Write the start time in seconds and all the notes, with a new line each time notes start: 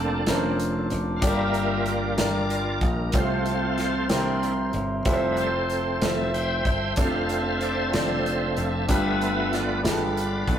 Already playing: F1 A#3 C4 D4 F4 A4 A#4 D5 A5 D6
0.27 F1 A#3 C4 C#4 D4 F4 A4 A#4 C5, snare, closed hi-hat
0.34 D4
0.59 closed hi-hat
0.90 F1, closed hi-hat
1.16 F5
1.21 G1 G2 G3 D4 F4 G4 A4 D5 G5, kick, closed hi-hat
1.25 A#3 F4 A#4 E5
1.30 A#4
1.54 closed hi-hat
1.86 F4 A#4 D5, closed hi-hat
2.17 G1 D4 F4 G4 A#4 D5, snare, closed hi-hat
2.50 closed hi-hat
2.81 A#1, kick, closed hi-hat
2.86 A#4
3.12 C2 C3 F3 A3 C4 F4 A4 C5 A5 C6, kick, closed hi-hat
3.18 C5
3.46 closed hi-hat
3.78 snare, closed hi-hat
4.09 C2 C3 A#3 C4 D4 E4 G4 A#4 C5 E5 G5 A#5 C6, snare, closed hi-hat
4.43 closed hi-hat
4.73 G1, closed hi-hat
5.05 F1 G3 A3 C4 E4 F4 A4 B4 E5 A5, kick, closed hi-hat
5.14 C5
5.32 B4
5.37 C4 A4 C5, closed hi-hat
5.70 closed hi-hat
6.01 F1 C4 E4 F4 A4 C5 E5, snare, closed hi-hat
6.33 C5 E5 G5, closed hi-hat
6.65 G1, kick, closed hi-hat
6.96 F1 F3 C4 D4 E4 A4 C5 D5 E5 F5 A5, kick, closed hi-hat
7.04 F4
7.29 closed hi-hat
7.61 D5, closed hi-hat
7.93 F1 C4 D4 F4 A4 C5 D5, snare, closed hi-hat
8.26 closed hi-hat
8.57 F1, closed hi-hat
8.88 G1 G2 A3 B3 D4 F4 G4 B4 E5 G5 B5, kick, closed hi-hat
9.21 closed hi-hat
9.53 D5, snare, closed hi-hat
9.82 G1 B3 D4 F4 G4 G#4, snare, closed hi-hat
9.87 F4 A4 B4 D5
10.17 closed hi-hat
10.48 B1 A3 B3 F4, kick, closed hi-hat